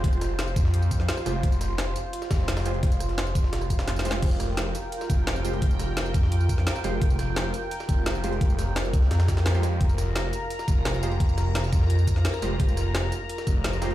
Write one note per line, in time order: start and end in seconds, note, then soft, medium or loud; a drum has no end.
0.00 0.55 F1 loud
0.00 1.24 G#3 medium
0.00 1.24 F4 medium
0.00 13.95 F4 medium
0.00 1.24 G4 medium
0.00 1.24 C5 medium
0.00 4.18 C5 medium
0.00 kick loud
0.00 closed hi-hat medium
0.04 closed hi-hat medium
0.13 tambourine soft
0.21 cross-stick soft
0.21 snare medium
0.21 closed hi-hat medium
0.21 tambourine medium
0.39 snare loud
0.39 closed hi-hat medium
0.48 tambourine soft
0.56 1.07 F2 loud
0.56 kick loud
0.56 closed hi-hat medium
0.56 tambourine medium
0.65 snare medium
0.74 closed hi-hat medium
0.82 tambourine soft
0.91 kick medium
0.91 closed hi-hat medium
0.91 tambourine medium
1.00 snare soft
1.09 snare loud
1.09 closed hi-hat medium
1.09 open hi-hat medium
1.17 cross-stick soft
1.17 snare soft
1.17 tambourine soft
1.26 1.42 F1 loud
1.26 2.63 G#3 medium
1.26 2.63 F4 medium
1.26 2.63 G4 medium
1.26 2.63 C5 medium
1.26 cross-stick soft
1.26 snare medium
1.26 closed hi-hat medium
1.26 tambourine medium
1.43 1.94 F1 loud
1.43 kick loud
1.43 closed hi-hat medium
1.52 closed hi-hat soft
1.52 tambourine soft
1.61 cross-stick soft
1.61 snare soft
1.61 closed hi-hat medium
1.61 tambourine medium
1.78 snare loud
1.78 closed hi-hat loud
1.78 closed hi-hat medium
1.96 closed hi-hat medium
1.96 tambourine medium
2.13 closed hi-hat loud
2.13 closed hi-hat medium
2.22 snare medium
2.22 tambourine soft
2.31 2.82 F1 loud
2.31 kick loud
2.31 snare loud
2.31 closed hi-hat medium
2.31 open hi-hat medium
2.31 tambourine medium
2.39 snare soft
2.48 snare loud
2.48 snare medium
2.48 closed hi-hat loud
2.48 closed hi-hat medium
2.57 snare loud
2.57 open hi-hat medium
2.57 tambourine soft
2.65 4.03 G#3 medium
2.65 4.03 F4 medium
2.65 4.03 G4 medium
2.65 4.03 C5 medium
2.65 closed hi-hat medium
2.65 tambourine medium
2.74 closed hi-hat soft
2.83 3.34 F1 loud
2.83 kick loud
2.83 snare soft
2.83 closed hi-hat loud
2.83 closed hi-hat medium
2.92 closed hi-hat medium
2.92 tambourine soft
3.00 cross-stick soft
3.00 closed hi-hat medium
3.00 closed hi-hat soft
3.00 tambourine medium
3.09 snare soft
3.09 closed hi-hat medium
3.18 snare loud
3.18 closed hi-hat loud
3.18 closed hi-hat medium
3.27 tambourine soft
3.35 3.86 F1 loud
3.35 kick loud
3.35 closed hi-hat medium
3.35 tambourine medium
3.44 snare medium
3.53 snare loud
3.53 closed hi-hat loud
3.53 closed hi-hat medium
3.61 cross-stick soft
3.61 tambourine soft
3.70 kick medium
3.70 closed hi-hat medium
3.70 tambourine medium
3.79 snare soft
3.79 snare loud
3.79 closed hi-hat medium
3.88 4.21 F1 medium
3.88 snare medium
3.88 closed hi-hat medium
3.96 snare medium
3.96 closed hi-hat soft
3.96 tambourine soft
4.05 5.42 G#3 medium
4.05 5.42 F4 medium
4.05 5.43 G4 medium
4.05 5.42 C5 medium
4.05 snare soft
4.05 closed hi-hat medium
4.05 tambourine medium
4.11 snare loud
4.22 4.73 F1 loud
4.22 13.95 A#4 medium
4.22 9.78 G5 medium
4.22 kick loud
4.22 closed hi-hat medium
4.22 crash medium
4.31 closed hi-hat soft
4.31 tambourine soft
4.40 cross-stick soft
4.40 snare soft
4.40 closed hi-hat medium
4.40 tambourine medium
4.57 snare loud
4.57 closed hi-hat loud
4.57 closed hi-hat medium
4.75 closed hi-hat medium
4.75 tambourine medium
4.92 closed hi-hat loud
4.92 closed hi-hat medium
5.01 snare medium
5.01 tambourine soft
5.10 5.61 F1 loud
5.10 kick loud
5.10 closed hi-hat medium
5.10 tambourine medium
5.27 snare loud
5.27 closed hi-hat loud
5.27 closed hi-hat medium
5.36 tambourine soft
5.45 6.82 G#3 medium
5.45 6.82 F4 medium
5.45 6.82 G4 medium
5.45 6.82 C5 loud
5.45 closed hi-hat medium
5.45 tambourine medium
5.53 closed hi-hat soft
5.62 6.13 F1 loud
5.62 kick loud
5.62 closed hi-hat medium
5.71 tambourine soft
5.79 cross-stick soft
5.79 snare medium
5.79 closed hi-hat medium
5.79 tambourine medium
5.97 snare loud
5.97 closed hi-hat medium
6.06 tambourine soft
6.14 6.65 F2 loud
6.14 kick loud
6.14 closed hi-hat medium
6.14 tambourine medium
6.23 snare medium
6.32 closed hi-hat loud
6.32 closed hi-hat medium
6.41 tambourine soft
6.49 kick medium
6.49 closed hi-hat medium
6.49 tambourine medium
6.58 snare soft
6.67 snare loud
6.67 closed hi-hat loud
6.67 open hi-hat medium
6.75 cross-stick soft
6.75 snare soft
6.75 tambourine soft
6.84 7.00 F1 loud
6.84 8.22 G#3 medium
6.84 8.22 F4 medium
6.84 8.22 G4 medium
6.84 8.22 C5 medium
6.84 cross-stick soft
6.84 snare medium
6.84 closed hi-hat medium
6.84 tambourine medium
7.02 7.53 F1 loud
7.02 kick loud
7.02 closed hi-hat medium
7.10 closed hi-hat soft
7.10 tambourine soft
7.19 cross-stick soft
7.19 snare soft
7.19 closed hi-hat medium
7.19 tambourine medium
7.36 snare loud
7.36 closed hi-hat medium
7.54 closed hi-hat medium
7.54 tambourine medium
7.71 closed hi-hat medium
7.80 snare medium
7.80 tambourine soft
7.89 8.40 F1 loud
7.89 kick loud
7.89 closed hi-hat medium
7.89 tambourine medium
8.06 snare loud
8.06 closed hi-hat medium
8.15 tambourine soft
8.24 9.53 G#3 medium
8.24 9.53 F4 medium
8.24 9.53 G4 medium
8.24 9.53 C5 medium
8.24 closed hi-hat medium
8.24 tambourine medium
8.33 closed hi-hat soft
8.41 8.92 F1 loud
8.41 kick loud
8.41 closed hi-hat medium
8.50 tambourine soft
8.59 cross-stick soft
8.59 snare medium
8.59 closed hi-hat medium
8.59 tambourine medium
8.76 snare loud
8.76 closed hi-hat medium
8.85 tambourine soft
8.93 9.10 C2 medium
8.93 kick loud
8.93 closed hi-hat medium
8.93 tambourine medium
9.02 snare medium
9.11 9.79 F2 loud
9.11 snare loud
9.11 closed hi-hat medium
9.20 snare loud
9.20 closed hi-hat medium
9.20 tambourine soft
9.28 kick medium
9.28 snare loud
9.28 closed hi-hat medium
9.28 tambourine medium
9.37 snare soft
9.37 snare loud
9.37 closed hi-hat medium
9.46 snare loud
9.46 closed hi-hat medium
9.46 open hi-hat medium
9.54 9.63 G#3 medium
9.54 9.63 F4 medium
9.54 9.63 G4 medium
9.54 9.63 C5 loud
9.54 cross-stick soft
9.54 snare soft
9.54 tambourine soft
9.63 cross-stick soft
9.63 snare medium
9.63 closed hi-hat medium
9.63 tambourine medium
9.81 10.32 F1 loud
9.81 13.95 A#5 medium
9.81 kick loud
9.81 closed hi-hat medium
9.89 closed hi-hat soft
9.89 tambourine soft
9.98 cross-stick soft
9.98 snare soft
9.98 closed hi-hat medium
9.98 tambourine medium
10.16 snare loud
10.16 closed hi-hat medium
10.33 closed hi-hat medium
10.33 tambourine medium
10.50 closed hi-hat medium
10.50 closed hi-hat loud
10.59 snare medium
10.59 tambourine soft
10.68 11.19 F1 loud
10.68 kick loud
10.68 closed hi-hat medium
10.68 tambourine medium
10.85 snare loud
10.85 closed hi-hat medium
10.94 tambourine soft
11.03 12.40 G#3 medium
11.03 12.40 F4 medium
11.03 12.40 G4 medium
11.03 12.40 C5 medium
11.03 closed hi-hat medium
11.03 tambourine medium
11.12 closed hi-hat soft
11.20 11.71 F1 loud
11.20 kick loud
11.20 closed hi-hat medium
11.29 tambourine soft
11.38 cross-stick soft
11.38 snare medium
11.38 closed hi-hat medium
11.38 tambourine medium
11.55 snare loud
11.55 closed hi-hat medium
11.64 tambourine soft
11.72 12.23 F2 medium
11.72 kick loud
11.72 closed hi-hat medium
11.72 tambourine medium
11.81 snare medium
11.90 closed hi-hat medium
11.99 tambourine soft
12.07 kick medium
12.07 closed hi-hat medium
12.07 tambourine medium
12.16 snare soft
12.25 snare loud
12.25 closed hi-hat medium
12.25 open hi-hat medium
12.34 cross-stick soft
12.34 snare soft
12.34 tambourine soft
12.42 12.58 F1 loud
12.42 13.80 G#3 medium
12.42 13.80 F4 medium
12.42 13.80 G4 medium
12.42 13.80 C5 medium
12.42 cross-stick soft
12.42 snare medium
12.42 closed hi-hat medium
12.42 tambourine medium
12.60 13.11 F1 loud
12.60 kick loud
12.60 closed hi-hat medium
12.68 closed hi-hat soft
12.68 tambourine soft
12.77 cross-stick soft
12.77 snare soft
12.77 closed hi-hat medium
12.77 tambourine medium
12.95 snare loud
12.95 closed hi-hat medium
13.12 closed hi-hat medium
13.12 tambourine medium
13.29 closed hi-hat medium
13.38 snare medium
13.38 tambourine soft
13.47 13.95 F1 loud
13.47 kick loud
13.47 closed hi-hat medium
13.47 tambourine medium
13.64 snare loud
13.64 closed hi-hat loud
13.64 closed hi-hat medium
13.73 tambourine soft
13.82 13.95 G#3 medium
13.82 13.95 F4 medium
13.82 13.95 G4 medium
13.82 13.95 C5 medium
13.82 snare loud
13.82 closed hi-hat medium
13.82 tambourine medium
13.91 closed hi-hat soft